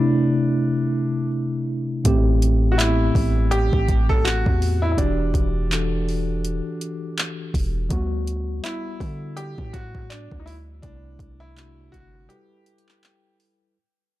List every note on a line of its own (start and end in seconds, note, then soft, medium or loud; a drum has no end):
0.00 2.07 C3 medium
0.00 2.05 A3 medium
0.00 1.28 D4 medium
0.00 2.07 D4 medium
0.00 2.07 E4 medium
2.04 3.11 A1 loud
2.04 2.69 A2 medium
2.04 2.70 A3 medium
2.04 2.70 C4 medium
2.04 2.71 G4 loud
2.04 kick loud
2.04 closed hi-hat medium
2.42 closed hi-hat medium
2.72 2.78 F#4 medium
2.77 4.06 A2 medium
2.77 4.07 A3 medium
2.77 2.86 B3 medium
2.77 3.54 E4 medium
2.77 4.08 G4 medium
2.77 clap loud
2.77 closed hi-hat medium
2.86 4.11 C4 medium
3.15 3.71 A1 loud
3.15 kick medium
3.15 open hi-hat medium
3.51 4.05 G4 loud
3.51 closed hi-hat medium
3.73 4.11 A1 loud
3.73 kick medium
3.89 kick loud
3.89 closed hi-hat medium
4.09 4.27 B1 loud
4.09 4.24 A4 loud
4.09 kick medium
4.25 4.45 A1 loud
4.25 4.78 F#4 loud
4.25 clap loud
4.25 closed hi-hat medium
4.46 4.96 E2 loud
4.46 kick medium
4.62 open hi-hat medium
4.82 4.90 E4 medium
4.92 4.98 E4 medium
4.96 5.33 E1 loud
4.96 5.62 E3 medium
4.96 5.62 D4 medium
4.96 7.13 D4 medium
4.96 5.63 F#4 medium
4.96 5.64 G4 medium
4.96 kick loud
4.96 closed hi-hat medium
5.34 6.61 E1 loud
5.34 kick loud
5.34 closed hi-hat medium
5.70 6.99 E3 medium
5.70 7.00 D4 medium
5.70 7.00 F#4 medium
5.70 7.01 A4 medium
5.70 clap loud
5.70 closed hi-hat medium
6.09 open hi-hat medium
6.45 closed hi-hat medium
6.81 closed hi-hat medium
7.18 clap loud
7.18 closed hi-hat medium
7.54 7.89 E1 loud
7.54 kick medium
7.54 open hi-hat medium
7.89 8.61 D2 loud
7.89 8.55 G3 loud
7.89 8.55 B3 medium
7.89 8.56 F#4 loud
7.89 kick loud
7.89 closed hi-hat medium
8.27 closed hi-hat medium
8.62 9.92 G3 medium
8.62 9.93 B3 medium
8.62 9.39 E4 loud
8.62 9.93 E4 medium
8.62 clap loud
8.62 closed hi-hat medium
9.00 9.56 D3 loud
9.00 kick medium
9.00 open hi-hat soft
9.37 9.74 G4 loud
9.37 closed hi-hat medium
9.58 10.28 A2 loud
9.58 kick medium
9.73 10.11 F#4 loud
9.73 kick loud
9.73 closed hi-hat medium
9.95 kick medium
10.10 10.38 D4 loud
10.10 clap loud
10.10 closed hi-hat medium
10.31 10.81 D2 loud
10.31 kick medium
10.40 10.46 D#4 medium
10.46 10.54 E4 medium
10.46 open hi-hat medium
10.82 11.18 C2 loud
10.82 11.47 C3 medium
10.82 11.48 A3 medium
10.82 11.42 D4 medium
10.82 11.48 D4 medium
10.82 11.49 E4 medium
10.82 kick loud
10.82 closed hi-hat medium
11.19 11.90 C2 loud
11.19 kick loud
11.19 closed hi-hat medium
11.40 11.94 E4 loud
11.55 12.29 C3 medium
11.55 12.29 A3 medium
11.55 12.30 D4 medium
11.55 12.31 F#4 medium
11.55 clap loud
11.55 closed hi-hat medium
11.92 12.28 G1 loud
11.92 12.30 F#4 loud
11.92 kick medium
11.92 closed hi-hat medium
12.28 13.58 G3 medium
12.28 13.58 E4 medium
12.28 13.35 G4 medium
12.28 13.59 A4 medium
12.28 13.59 B4 medium
12.28 closed hi-hat medium
12.66 closed hi-hat medium
12.78 closed hi-hat medium
12.89 clap medium
12.89 closed hi-hat soft
13.03 clap loud
13.03 closed hi-hat medium
13.40 open hi-hat medium